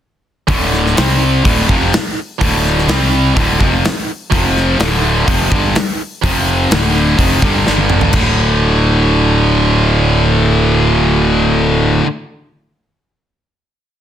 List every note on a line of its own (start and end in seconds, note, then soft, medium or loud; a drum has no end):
0.48 0.93 D1 medium
0.48 0.95 D2 medium
0.48 0.96 A2 loud
0.48 0.96 D3 loud
0.48 kick loud
0.48 open hi-hat soft
0.74 snare soft
0.86 snare soft
0.96 1.42 C2 loud
0.96 1.43 C3 medium
0.96 1.43 G3 medium
0.96 1.44 C4 loud
0.96 snare loud
0.96 open hi-hat medium
1.43 1.67 D1 medium
1.43 1.67 D2 medium
1.43 1.67 A2 loud
1.43 1.68 D3 loud
1.43 kick loud
1.43 open hi-hat medium
1.67 1.91 F1 medium
1.67 1.91 F2 medium
1.67 1.91 C3 medium
1.67 1.92 F3 loud
1.67 kick loud
1.93 snare loud
1.93 open hi-hat medium
2.41 2.86 D1 medium
2.41 2.88 D2 loud
2.41 2.88 A2 loud
2.41 2.88 D3 loud
2.41 kick medium
2.41 open hi-hat medium
2.67 snare soft
2.78 snare soft
2.88 3.33 C2 medium
2.88 3.36 C3 medium
2.88 3.36 G3 loud
2.88 3.36 C4 medium
2.88 snare loud
2.88 open hi-hat medium
3.37 3.59 D2 medium
3.37 3.60 A2 medium
3.37 3.60 D3 loud
3.37 kick loud
3.37 open hi-hat medium
3.59 3.83 F1 loud
3.59 3.83 F2 medium
3.59 3.83 C3 medium
3.59 3.83 F3 loud
3.59 kick loud
3.85 snare loud
3.85 open hi-hat medium
4.31 4.76 F1 loud
4.31 4.78 F2 medium
4.31 4.78 C3 loud
4.31 4.79 F3 loud
4.31 kick loud
4.31 open hi-hat soft
4.57 snare soft
4.78 5.24 D1 loud
4.78 5.26 D2 loud
4.78 5.26 A2 loud
4.78 5.27 D3 loud
4.78 snare loud
4.78 open hi-hat medium
5.27 5.50 F1 medium
5.27 5.50 F2 medium
5.27 5.50 C3 medium
5.27 5.51 F3 loud
5.27 kick medium
5.27 open hi-hat medium
5.51 5.74 G1 loud
5.51 5.74 G2 loud
5.51 5.75 D3 medium
5.51 5.74 G3 medium
5.51 kick loud
5.75 snare loud
5.75 open hi-hat medium
6.23 6.67 F1 loud
6.23 6.71 F2 loud
6.23 6.71 C3 loud
6.23 6.72 F3 loud
6.23 kick loud
6.23 open hi-hat medium
6.71 7.15 D1 loud
6.71 7.18 D2 loud
6.71 7.18 A2 medium
6.71 7.18 D3 loud
6.71 snare loud
6.71 open hi-hat medium
7.19 7.41 F1 medium
7.19 7.42 F2 medium
7.19 7.42 C3 loud
7.19 7.42 F3 loud
7.19 kick loud
7.19 open hi-hat medium
7.42 7.64 G1 medium
7.42 7.64 G2 medium
7.42 7.65 D3 medium
7.42 7.65 G3 medium
7.42 kick loud
7.66 8.11 G1 medium
7.66 8.12 G2 medium
7.66 8.13 D3 medium
7.66 8.13 G3 loud
7.66 snare medium
7.78 high tom medium
7.90 mid tom medium
8.01 floor tom medium
8.13 12.00 D1 loud
8.13 12.02 D2 medium
8.13 12.05 A2 medium
8.13 kick loud
8.13 crash medium
8.17 12.07 D3 loud